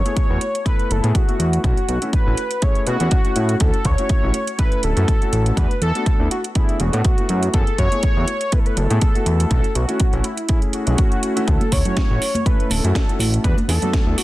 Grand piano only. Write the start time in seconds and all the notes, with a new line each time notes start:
0.05 A3 B3 E4 G#4
0.29 A3 B3 E4 F#4
0.65 A3 B3 E4 A4
1.03 A3 B3 E4 G#4
1.28 A3 B3 E4 F#4
1.64 A3 C#4 E4 F#4
2.02 A3 C#4 E4 F#4
2.26 A3 C#4 E4 F#4
2.62 A3 C#4 E4 G#4
3.00 A3 C#4 E4 F#4
3.24 A3 C#4 E4 F#4
3.60 A3 C#4 E4 F#4
3.98 A3 C#4 E4 F#4
4.22 A3 C#4 E4 F#4
4.58 A3 C#4 E4 A4
4.96 A3 C#4 E4 F#4
5.21 A3 C#4 E4 F#4
5.57 A3 B3 D4 F#4
5.95 A3 B3 D4 F#4
6.20 A3 B3 D4 E4
6.55 A3 B3 D4 G#4
6.93 A3 B3 D4 F#4
7.18 A3 B3 E4 F#4
7.54 A3 B3 E4 G#4
7.91 A3 B3 E4 G#4
8.16 A3 B3 E4 F#4
8.52 A3 B3 E4 A4
8.90 A3 B3 E4 G#4
9.15 A3 B3 E4 F#4
9.50 A3 C#4 E4 F#4
9.88 A3 C#4 E4 F#4
10.13 A3 C#4 E4 F#4
10.49 A3 C#4 E4 G#4
10.86 A3 C#4 E4 G#4
10.98 A3 C#4 E4 F#4
11.36 A3 C#4 E4 F#4
11.47 A3 C#4 F#4
11.85 A3 C#4 E4 F#4
12.10 A3 C#4 E4 F#4
12.46 A3 C#4 E4 A4
12.83 A3 C#4 E4 F#4
13.08 A3 C#4 E4 F#4
13.44 A3 B3 D4 F#4
13.82 A3 B3 D4 F#4
14.06 A3 B3 D4 E4